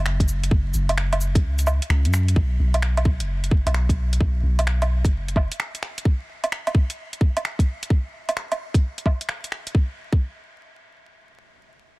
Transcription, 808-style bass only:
0, 0, Header, 1, 2, 480
1, 0, Start_track
1, 0, Tempo, 461538
1, 537, Time_signature, 4, 2, 24, 8
1, 12470, End_track
2, 0, Start_track
2, 0, Title_t, "808-style bass"
2, 0, Program_c, 0, 38
2, 0, Note_on_c, 0, 30, 104
2, 524, Note_off_c, 0, 30, 0
2, 533, Note_on_c, 0, 30, 103
2, 761, Note_off_c, 0, 30, 0
2, 773, Note_on_c, 0, 30, 90
2, 1406, Note_on_c, 0, 37, 85
2, 1422, Note_off_c, 0, 30, 0
2, 1869, Note_off_c, 0, 37, 0
2, 1972, Note_on_c, 0, 37, 89
2, 2130, Note_on_c, 0, 42, 84
2, 2145, Note_off_c, 0, 37, 0
2, 2445, Note_off_c, 0, 42, 0
2, 2454, Note_on_c, 0, 35, 99
2, 2682, Note_off_c, 0, 35, 0
2, 2698, Note_on_c, 0, 35, 84
2, 3330, Note_on_c, 0, 30, 84
2, 3345, Note_off_c, 0, 35, 0
2, 3791, Note_off_c, 0, 30, 0
2, 3807, Note_on_c, 0, 35, 95
2, 4363, Note_off_c, 0, 35, 0
2, 4372, Note_on_c, 0, 35, 99
2, 4601, Note_off_c, 0, 35, 0
2, 4607, Note_on_c, 0, 35, 87
2, 5248, Note_on_c, 0, 30, 81
2, 5264, Note_off_c, 0, 35, 0
2, 5710, Note_off_c, 0, 30, 0
2, 12470, End_track
0, 0, End_of_file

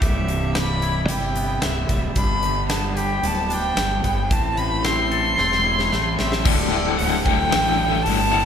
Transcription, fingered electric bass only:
0, 0, Header, 1, 2, 480
1, 0, Start_track
1, 0, Tempo, 535236
1, 24, Time_signature, 4, 2, 24, 8
1, 7578, End_track
2, 0, Start_track
2, 0, Title_t, "Fingered electric bass"
2, 0, Program_c, 0, 33
2, 12, Note_on_c, 0, 24, 88
2, 944, Note_off_c, 0, 24, 0
2, 976, Note_on_c, 0, 31, 89
2, 1437, Note_off_c, 0, 31, 0
2, 1461, Note_on_c, 0, 24, 77
2, 1690, Note_off_c, 0, 24, 0
2, 1695, Note_on_c, 0, 26, 88
2, 1929, Note_off_c, 0, 26, 0
2, 1935, Note_on_c, 0, 31, 95
2, 2867, Note_off_c, 0, 31, 0
2, 2898, Note_on_c, 0, 26, 82
2, 3360, Note_off_c, 0, 26, 0
2, 3378, Note_on_c, 0, 31, 82
2, 3612, Note_off_c, 0, 31, 0
2, 3623, Note_on_c, 0, 31, 88
2, 3855, Note_off_c, 0, 31, 0
2, 3862, Note_on_c, 0, 33, 102
2, 4791, Note_off_c, 0, 33, 0
2, 4829, Note_on_c, 0, 28, 92
2, 5285, Note_off_c, 0, 28, 0
2, 5316, Note_on_c, 0, 33, 87
2, 5541, Note_off_c, 0, 33, 0
2, 5559, Note_on_c, 0, 33, 89
2, 5780, Note_off_c, 0, 33, 0
2, 5785, Note_on_c, 0, 26, 97
2, 6243, Note_off_c, 0, 26, 0
2, 6277, Note_on_c, 0, 26, 101
2, 6728, Note_off_c, 0, 26, 0
2, 6761, Note_on_c, 0, 33, 95
2, 7209, Note_off_c, 0, 33, 0
2, 7227, Note_on_c, 0, 31, 92
2, 7578, Note_off_c, 0, 31, 0
2, 7578, End_track
0, 0, End_of_file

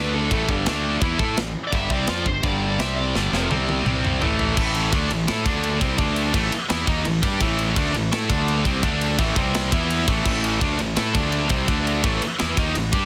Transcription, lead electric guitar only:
0, 0, Header, 1, 2, 480
1, 0, Start_track
1, 0, Key_signature, 0, "minor"
1, 0, Tempo, 355450
1, 421, Time_signature, 4, 2, 24, 8
1, 17625, End_track
2, 0, Start_track
2, 0, Title_t, "Lead electric guitar"
2, 0, Program_c, 0, 29
2, 0, Note_on_c, 0, 71, 75
2, 190, Note_off_c, 0, 71, 0
2, 195, Note_on_c, 0, 69, 82
2, 634, Note_off_c, 0, 69, 0
2, 2261, Note_on_c, 0, 74, 67
2, 2330, Note_off_c, 0, 74, 0
2, 2368, Note_on_c, 0, 76, 106
2, 2572, Note_off_c, 0, 76, 0
2, 2572, Note_on_c, 0, 74, 103
2, 3051, Note_on_c, 0, 72, 78
2, 3069, Note_off_c, 0, 74, 0
2, 3283, Note_on_c, 0, 74, 90
2, 3301, Note_off_c, 0, 72, 0
2, 3775, Note_off_c, 0, 74, 0
2, 3780, Note_on_c, 0, 76, 90
2, 4004, Note_off_c, 0, 76, 0
2, 4009, Note_on_c, 0, 74, 83
2, 4682, Note_off_c, 0, 74, 0
2, 17625, End_track
0, 0, End_of_file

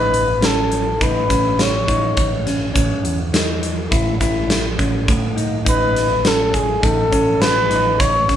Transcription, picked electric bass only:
0, 0, Header, 1, 2, 480
1, 0, Start_track
1, 0, Tempo, 582524
1, 2270, Time_signature, 5, 2, 24, 8
1, 6893, End_track
2, 0, Start_track
2, 0, Title_t, "Picked electric bass"
2, 0, Program_c, 0, 34
2, 0, Note_on_c, 0, 33, 100
2, 794, Note_off_c, 0, 33, 0
2, 830, Note_on_c, 0, 33, 87
2, 1056, Note_off_c, 0, 33, 0
2, 1066, Note_on_c, 0, 33, 81
2, 1521, Note_off_c, 0, 33, 0
2, 1547, Note_on_c, 0, 33, 82
2, 1775, Note_off_c, 0, 33, 0
2, 1788, Note_on_c, 0, 33, 69
2, 2242, Note_off_c, 0, 33, 0
2, 2267, Note_on_c, 0, 33, 99
2, 2382, Note_off_c, 0, 33, 0
2, 2499, Note_on_c, 0, 40, 83
2, 3191, Note_off_c, 0, 40, 0
2, 3226, Note_on_c, 0, 33, 84
2, 3455, Note_off_c, 0, 33, 0
2, 3462, Note_on_c, 0, 33, 85
2, 3919, Note_off_c, 0, 33, 0
2, 3946, Note_on_c, 0, 33, 87
2, 4174, Note_off_c, 0, 33, 0
2, 4189, Note_on_c, 0, 45, 84
2, 4642, Note_off_c, 0, 45, 0
2, 4665, Note_on_c, 0, 33, 96
2, 5593, Note_off_c, 0, 33, 0
2, 5629, Note_on_c, 0, 33, 87
2, 5855, Note_off_c, 0, 33, 0
2, 5871, Note_on_c, 0, 33, 85
2, 6322, Note_off_c, 0, 33, 0
2, 6342, Note_on_c, 0, 33, 75
2, 6571, Note_off_c, 0, 33, 0
2, 6588, Note_on_c, 0, 33, 72
2, 6893, Note_off_c, 0, 33, 0
2, 6893, End_track
0, 0, End_of_file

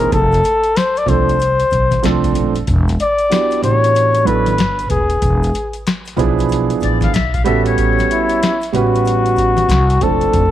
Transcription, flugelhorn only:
0, 0, Header, 1, 2, 480
1, 0, Start_track
1, 0, Tempo, 638298
1, 90, Time_signature, 4, 2, 24, 8
1, 7904, End_track
2, 0, Start_track
2, 0, Title_t, "Flugelhorn"
2, 0, Program_c, 0, 56
2, 0, Note_on_c, 0, 70, 89
2, 93, Note_off_c, 0, 70, 0
2, 98, Note_on_c, 0, 69, 97
2, 579, Note_on_c, 0, 72, 97
2, 590, Note_off_c, 0, 69, 0
2, 736, Note_on_c, 0, 74, 85
2, 747, Note_off_c, 0, 72, 0
2, 819, Note_on_c, 0, 72, 99
2, 831, Note_off_c, 0, 74, 0
2, 1775, Note_off_c, 0, 72, 0
2, 2265, Note_on_c, 0, 74, 106
2, 2708, Note_off_c, 0, 74, 0
2, 2735, Note_on_c, 0, 73, 106
2, 3205, Note_on_c, 0, 71, 95
2, 3217, Note_off_c, 0, 73, 0
2, 3684, Note_off_c, 0, 71, 0
2, 3688, Note_on_c, 0, 68, 78
2, 4379, Note_off_c, 0, 68, 0
2, 6104, Note_on_c, 0, 64, 85
2, 6547, Note_off_c, 0, 64, 0
2, 6587, Note_on_c, 0, 66, 99
2, 7541, Note_on_c, 0, 69, 101
2, 7552, Note_off_c, 0, 66, 0
2, 7904, Note_off_c, 0, 69, 0
2, 7904, End_track
0, 0, End_of_file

